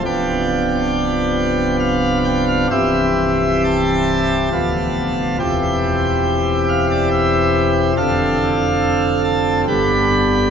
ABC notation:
X:1
M:3/4
L:1/16
Q:1/4=69
K:C
V:1 name="Pipe organ"
g8 f2 g f | e4 a8 | g6 f d e4 | f6 a2 b4 |]
V:2 name="Pipe organ" clef=bass
[C,,,C,,F,B,D]12 | [C,,,C,,E,CG]8 [D,,,D,,F,B,F]4 | [E,,,E,,E,CG]12 | [F,,,F,,D,CA]8 [G,,,G,,D,B,G]4 |]